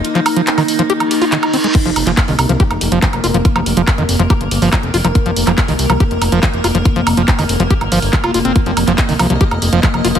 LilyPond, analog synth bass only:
\new Staff \with { instrumentName = "Analog synth bass" } { \clef bass \time 4/4 \key c \phrygian \tempo 4 = 141 r1 | r16 f,,16 f,,16 f,,16 r16 c,16 c,16 c,16 r16 f,,16 f,,16 f,,16 r16 f,,16 f,,16 f,,16 | r16 f,,16 f,,16 f,,16 r16 f,,16 f,,16 f,,16 r16 g,,16 g,,16 g,,16 r16 f,,16 f,,16 f,,16 | r16 f,,16 f,,16 f,,16 r16 c,16 c,16 c,16 r16 f,,16 f,,16 f,,16 r16 f,,16 f,,16 f,,16 |
r16 f,,16 f,,16 f,,16 r16 f,,16 f,,16 f,,16 r16 g,,16 g,,16 g,,16 r16 f,,16 f,,16 f,,16 | r16 f,,16 f,,16 f,,16 r16 c,16 c,16 c,16 r16 f,,16 f,,16 f,,16 r16 f,,16 f,,16 f,,16 | }